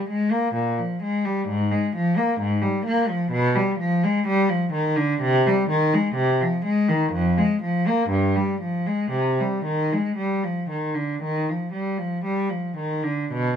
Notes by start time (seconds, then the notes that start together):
0.09 G#3
0.31 A#3
0.54 A#2
0.78 F3
1.03 G#3
1.25 G3
1.48 G#2
1.71 G#3
1.96 F3
2.17 A#3
2.40 G#2
2.62 G3
2.85 A#3
3.08 F3
3.31 B2
3.55 G3
3.79 F3
4.03 G#3
4.27 G3
4.49 F3
4.72 D#3
4.97 D3
5.21 C3
5.47 G3
5.70 D#3
5.94 G#3
6.15 C3
6.41 F3
6.65 G#3
6.88 D#3
7.12 F2
7.38 G#3
7.62 F3
7.87 A#3
8.09 G2
8.36 G3
8.61 F3
8.86 G#3
9.11 C3
9.40 G3
9.65 D#3
9.93 G#3
10.17 G3
10.44 F3
10.70 D#3
10.95 D3
11.23 D#3
11.50 F3
11.73 G3
11.98 F3
12.24 G3
12.50 F3
12.77 D#3
13.03 D3
13.33 B2